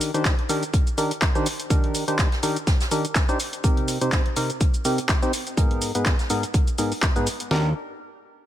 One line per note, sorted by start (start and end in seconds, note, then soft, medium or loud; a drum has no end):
0.00 0.11 D#3 medium
0.00 0.11 D4 medium
0.00 0.11 D#4 medium
0.00 0.11 G4 medium
0.00 0.11 A#4 medium
0.00 closed hi-hat medium
0.00 open hi-hat loud
0.00 cabasa medium
0.14 0.35 D#3 medium
0.14 0.35 D4 medium
0.14 0.35 D#4 medium
0.14 0.35 G4 medium
0.14 0.35 C5 medium
0.14 closed hi-hat medium
0.14 cabasa soft
0.25 kick loud
0.25 snare loud
0.25 clap loud
0.25 closed hi-hat medium
0.25 cabasa soft
0.39 closed hi-hat soft
0.49 0.64 D#3 medium
0.49 0.64 D4 medium
0.49 0.64 D#4 medium
0.49 0.64 G4 medium
0.49 0.64 A#4 loud
0.49 closed hi-hat medium
0.49 open hi-hat loud
0.49 cabasa medium
0.63 closed hi-hat medium
0.63 cabasa soft
0.73 kick loud
0.73 closed hi-hat medium
0.73 closed hi-hat soft
0.73 cabasa soft
0.87 closed hi-hat soft
0.87 cabasa soft
0.98 1.12 D#3 medium
0.98 1.12 D4 medium
0.98 1.12 D#4 medium
0.98 1.12 G4 medium
0.98 1.12 A#4 medium
0.98 closed hi-hat medium
0.98 open hi-hat loud
0.98 cabasa medium
1.11 closed hi-hat soft
1.11 cabasa soft
1.21 kick loud
1.21 snare loud
1.21 clap loud
1.21 closed hi-hat medium
1.21 cabasa soft
1.35 1.47 D#3 loud
1.35 1.47 D4 medium
1.35 1.47 D#4 medium
1.35 1.47 G4 medium
1.35 1.47 C5 loud
1.35 closed hi-hat soft
1.35 cabasa soft
1.46 closed hi-hat medium
1.46 open hi-hat loud
1.46 cabasa medium
1.60 closed hi-hat medium
1.60 cabasa soft
1.70 2.05 D#3 medium
1.70 2.05 D4 medium
1.70 2.05 D#4 medium
1.70 2.05 G4 medium
1.70 2.05 A#4 medium
1.70 kick loud
1.70 closed hi-hat medium
1.70 cabasa soft
1.84 closed hi-hat soft
1.94 closed hi-hat medium
1.94 open hi-hat loud
1.94 cabasa medium
2.08 2.28 D#3 medium
2.08 2.28 D4 medium
2.08 2.28 D#4 medium
2.08 2.28 G4 medium
2.08 2.28 C5 medium
2.08 closed hi-hat medium
2.08 cabasa soft
2.19 kick loud
2.19 snare loud
2.19 clap loud
2.19 closed hi-hat medium
2.19 cabasa soft
2.32 snare medium
2.32 closed hi-hat soft
2.43 2.57 D#3 medium
2.43 2.57 D4 medium
2.43 2.57 D#4 medium
2.43 2.57 G4 medium
2.43 2.57 A#4 loud
2.43 closed hi-hat medium
2.43 open hi-hat loud
2.43 cabasa medium
2.56 closed hi-hat medium
2.56 cabasa soft
2.67 kick loud
2.67 snare loud
2.67 closed hi-hat medium
2.67 closed hi-hat soft
2.67 cabasa soft
2.81 snare loud
2.81 closed hi-hat soft
2.81 closed hi-hat medium
2.81 cabasa soft
2.91 3.06 D#3 medium
2.91 3.06 D4 medium
2.91 3.06 D#4 medium
2.91 3.06 G4 medium
2.91 3.06 A#4 loud
2.91 closed hi-hat medium
2.91 open hi-hat loud
2.91 cabasa medium
3.05 closed hi-hat medium
3.05 cabasa soft
3.15 kick loud
3.15 snare loud
3.15 clap loud
3.15 closed hi-hat medium
3.15 cabasa soft
3.29 3.38 D4 loud
3.29 3.38 D#4 medium
3.29 3.38 G4 medium
3.29 3.38 C5 loud
3.29 closed hi-hat soft
3.29 cabasa soft
3.40 closed hi-hat medium
3.40 open hi-hat loud
3.40 cabasa medium
3.53 closed hi-hat medium
3.53 cabasa soft
3.64 3.98 C3 medium
3.64 3.98 C4 medium
3.64 3.98 D#4 medium
3.64 3.98 G4 medium
3.64 3.98 A#4 medium
3.64 kick loud
3.64 closed hi-hat medium
3.64 closed hi-hat loud
3.64 cabasa soft
3.77 closed hi-hat soft
3.88 closed hi-hat medium
3.88 open hi-hat medium
3.88 cabasa medium
4.01 4.22 C3 medium
4.01 4.22 C4 medium
4.01 4.22 D#4 medium
4.01 4.22 G4 medium
4.01 4.22 C5 medium
4.01 closed hi-hat medium
4.01 cabasa soft
4.12 kick loud
4.12 snare loud
4.12 clap loud
4.12 closed hi-hat medium
4.12 cabasa soft
4.26 closed hi-hat soft
4.36 4.51 C3 medium
4.36 4.51 C4 medium
4.36 4.51 D#4 medium
4.36 4.51 G4 medium
4.36 4.51 A#4 medium
4.36 closed hi-hat medium
4.36 open hi-hat loud
4.36 cabasa medium
4.50 closed hi-hat medium
4.50 cabasa soft
4.60 kick loud
4.60 closed hi-hat medium
4.60 cabasa soft
4.74 closed hi-hat soft
4.74 cabasa soft
4.85 4.99 C3 medium
4.85 4.99 C4 medium
4.85 4.99 D#4 medium
4.85 4.99 G4 medium
4.85 4.99 A#4 loud
4.85 closed hi-hat medium
4.85 open hi-hat medium
4.85 cabasa medium
4.98 closed hi-hat medium
4.98 closed hi-hat soft
4.98 cabasa soft
5.09 kick loud
5.09 snare loud
5.09 clap loud
5.09 closed hi-hat medium
5.09 cabasa soft
5.22 5.32 C4 loud
5.22 5.32 D#4 medium
5.22 5.32 G4 medium
5.22 5.32 C5 loud
5.22 closed hi-hat soft
5.22 cabasa soft
5.33 closed hi-hat medium
5.33 open hi-hat loud
5.33 cabasa medium
5.47 closed hi-hat medium
5.47 cabasa soft
5.57 5.92 G#2 medium
5.57 5.92 B3 medium
5.57 5.92 D#4 medium
5.57 5.92 G#4 medium
5.57 5.92 A#4 medium
5.57 kick loud
5.57 closed hi-hat loud
5.57 closed hi-hat medium
5.57 cabasa soft
5.71 closed hi-hat soft
5.82 closed hi-hat medium
5.82 open hi-hat loud
5.82 cabasa medium
5.95 6.15 G#2 medium
5.95 6.15 B3 medium
5.95 6.15 D#4 medium
5.95 6.15 G#4 medium
5.95 6.15 B4 medium
5.95 closed hi-hat medium
5.95 cabasa soft
6.05 kick loud
6.05 snare loud
6.05 clap loud
6.05 closed hi-hat medium
6.05 cabasa soft
6.19 snare medium
6.19 closed hi-hat soft
6.19 cabasa soft
6.30 6.44 G#2 medium
6.30 6.44 B3 medium
6.30 6.44 D#4 medium
6.30 6.44 G#4 medium
6.30 6.44 A#4 loud
6.30 closed hi-hat medium
6.30 open hi-hat loud
6.30 cabasa medium
6.43 closed hi-hat medium
6.43 cabasa soft
6.54 kick loud
6.54 closed hi-hat medium
6.54 cabasa soft
6.67 closed hi-hat soft
6.67 cabasa soft
6.78 6.93 G#2 medium
6.78 6.93 B3 medium
6.78 6.93 D#4 medium
6.78 6.93 G#4 medium
6.78 6.93 A#4 medium
6.78 closed hi-hat medium
6.78 open hi-hat loud
6.78 cabasa medium
6.92 open hi-hat medium
6.92 cabasa soft
7.02 kick loud
7.02 snare loud
7.02 clap loud
7.02 closed hi-hat medium
7.02 cabasa soft
7.16 7.28 G#2 loud
7.16 7.28 B3 medium
7.16 7.28 D#4 medium
7.16 7.28 G#4 medium
7.16 7.28 B4 loud
7.16 closed hi-hat soft
7.16 cabasa soft
7.27 closed hi-hat medium
7.27 open hi-hat loud
7.27 cabasa medium
7.40 closed hi-hat medium
7.40 cabasa soft
7.51 7.74 D#2 loud
7.51 7.69 D4 medium
7.51 7.69 D#4 medium
7.51 7.69 G4 medium
7.51 7.69 A#4 loud
7.51 snare loud